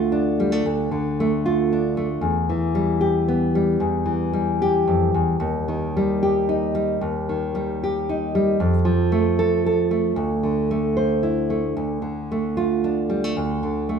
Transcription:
nylon-string guitar
Already playing: D2 D3 A3 F4
0.12 D4
0.40 G3
0.52 A3
0.66 D2
0.91 D3
1.20 A3
1.46 F4
1.73 D4
1.97 A3
2.21 E2
2.50 E3
2.75 G3
3.01 G4
3.28 B3
3.55 G3
3.80 E2
4.06 E3
4.33 G3
4.62 G4
4.88 F2
5.14 E2
5.40 D#2
5.68 D#3
5.97 G3
6.23 G4
6.49 D#4
6.75 G3
7.01 D#2
7.29 D#3
7.55 G3
7.84 G4
8.09 D#4
8.35 G3
8.60 F2
8.85 F3
9.12 A3
9.39 A4
9.66 A4
9.91 A3
10.16 D2
10.43 D3
10.71 A3
10.97 C5
11.23 E4
11.50 A3
11.77 D2
12.02 D3
12.32 A3
12.57 F4
12.84 D4
13.10 G3
13.24 A3
13.37 D2
13.63 D3
13.89 A3

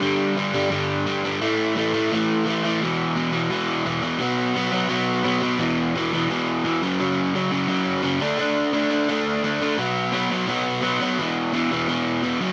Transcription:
overdriven electric guitar
0.01 G2 D3 G3
0.36 G2 D3 G3
0.54 G2 D3 G3
0.70 G2 D3 G3
1.06 G2 D3 G3
1.24 G2 D3 G3
1.41 A2 E3 A3
1.76 A2 E3 A3
1.93 A2 E3 A3
2.11 A2 E3 A3
2.45 A2 E3 A3
2.63 A2 E3 A3
2.81 E2 B2 E3
3.15 E2 B2 E3
3.32 E2 B2 E3
3.50 E2 B2 E3
3.85 E2 B2 E3
4.02 E2 B2 E3
4.20 B2 F#3 B3
4.55 B2 F#3 B3
4.72 B2 F#3 B3
4.89 B2 F#3 B3
5.24 B2 F#3 B3
5.42 B2 F#3 B3
5.59 E2 B2 E3
5.96 E2 B2 E3
6.13 E2 B2 E3
6.29 E2 B2 E3
6.64 E2 B2 E3
6.82 F#2 C#3 F#3
7.00 F#2 C#3 F#3
7.35 F#2 C#3 F#3
7.51 F#2 C#3 F#3
7.67 F#2 C#3 F#3
8.03 F#2 C#3 F#3
8.20 D3 A3 D4
8.38 D3 A3 D4
8.73 D3 A3 D4
8.90 D3 A3 D4
9.09 D3 A3 D4
9.43 D3 A3 D4
9.61 D3 A3 D4
9.78 B2 F#3 B3
10.12 B2 F#3 B3
10.30 B2 F#3 B3
10.47 B2 F#3 B3
10.82 B2 F#3 B3
11.01 B2 F#3 B3
11.18 E2 B2 E3
11.52 E2 B2 E3
11.72 E2 B2 E3
11.88 E2 B2 E3
12.23 E2 B2 E3
12.41 F#2 C#3 F#3

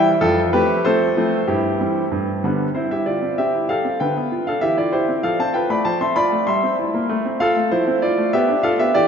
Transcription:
grand piano
Already playing: E3 G3 E4 E5
0.21 F2 F4 A4
0.53 F3 A3 C4 G4 B4
0.85 F3 A3 C4 A4 C5
1.17 F3 A3 C4
1.48 G2 E4 G4
1.79 E3 G3 C4
2.12 G2
2.44 D3 G3 B3
2.75 C4 E4 C5
2.91 E4 G4 E5
3.06 F4 G4 D5
3.22 C4
3.38 C4 G4 E5
3.54 E4
3.69 G4 A4 F5
3.85 C4
4.00 D3 B4 G5
4.16 B3
4.32 F4
4.47 D4 A4 F5
4.61 E3 G4 E5
4.77 E4 F4 D5
4.92 E4 G4 C5
5.08 C4
5.23 F3 A4 F5
5.39 C4 C5 A5
5.54 F4 B4 G5
5.70 A3 D5 B5
5.85 F3 C5 A5
6.01 C4 E5 C6
6.16 F4 D5 B5
6.32 A3
6.47 G3 E5 C6
6.63 C4
6.79 E4
6.94 A#3
7.09 A3
7.25 C4
7.40 F4 A4 F5
7.56 A3
7.71 F3 E4 C5
7.88 C4
8.02 E4 F4 D5
8.18 A3
8.33 B3 G4 E5
8.49 D4
8.63 F4 A4 F5
8.79 B3 G4 E5
8.95 E3 G4 D5

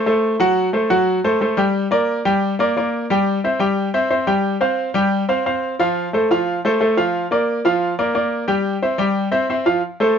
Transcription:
grand piano
0.06 A3 A4 C5
0.40 F#3 F#4 F#5
0.73 A3 A4 C5
0.90 F#3 F#4 F#5
1.24 A3 A4 C5
1.41 A3 A4 C5
1.57 G3 G4 G5
1.91 A#3 A#4 D5
2.25 G3 G4 G5
2.59 A#3 A#4 D5
2.77 A#3 A#4 D5
3.10 G3 G4 G5
3.44 C4 C5 E5
3.59 G3 G4 G5
3.94 C4 C5 E5
4.10 C4 C5 E5
4.27 G3 G4 G5
4.61 C4 C5 F5
4.94 G3 G4 G5
5.29 C4 C5 F5
5.46 C4 C5 F5
5.79 F3 F4 F5
6.13 A3 A4 C5
6.31 F3 F4 F5
6.65 A3 A4 C5
6.81 A3 A4 C5
6.97 F3 F4 F5
7.31 A#3 A#4 D5
7.65 F3 F4 F5
7.99 A#3 A#4 D5
8.15 A#3 A#4 D5
8.48 G3 G4 G5
8.82 C4 C5 E5
8.98 G3 G4 G5
9.32 C4 C5 E5
9.50 C4 C5 E5
9.66 F3 F4 F5
10.00 A3 A4 C5

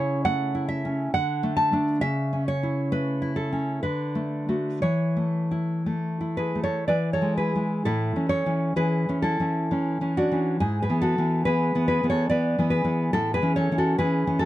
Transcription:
nylon-string guitar
Already playing: C#3 C#4 E4 C#5
0.25 A3 F#5
0.55 E4
0.68 E5
0.85 C#4
1.14 D3 F#5
1.43 A3
1.57 A5
1.72 A3 D4
2.01 C#3 E5
2.33 C#4
2.48 C#5
2.63 E4
2.92 A3 B4
3.22 E4
3.36 A4
3.53 C#4
3.83 D3 B4
4.15 A3
4.49 A3 F#4
4.82 E3 C#5
5.17 A3
5.51 E4
5.86 A3
6.21 E4
6.37 G#4 B4
6.55 A3
6.63 A4 C#5
6.88 E3 B4 D5
7.13 A4 C#5
7.22 G#3
7.37 G#4 B4
7.55 G#3 E4
7.85 A2 E4 A4
8.16 E3 C#4
8.29 A4 C#5
8.46 E3 C#4
8.76 E3 C#4 G#4 B4
9.09 E3 C#4
9.22 E4 A4
9.40 E3 C#4
9.71 E3 C#4
10.01 E3 C#4
10.17 D4 F#4
10.32 E3 C#4
10.60 G#2 E4 G#4
10.82 G#4 B4
10.89 E3 B3
11.02 F#4 A4
11.18 E3 B3
11.45 E3 B3 G#4 B4
11.75 E3 B3
11.88 G#4 B4
12.03 E3 B3
12.10 A4 C#5
12.29 E3 B3 B4 D5
12.58 E3 B3
12.70 G#4 B4
12.84 E3 B3
13.13 A2 E4 A4
13.34 G#4 B4
13.42 E3 C#4
13.56 A4 C#5
13.72 E3 C#4
13.78 F#4 A4
13.98 E3 C#4 G#4 B4
14.27 E3 C#4
14.39 F#4 A4

